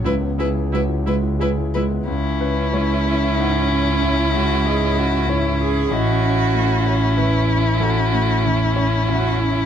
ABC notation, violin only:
X:1
M:3/4
L:1/8
Q:1/4=94
K:C#m
V:1 name="Violin"
B B B B B B | E6- | E6 | E6- |
E6 |]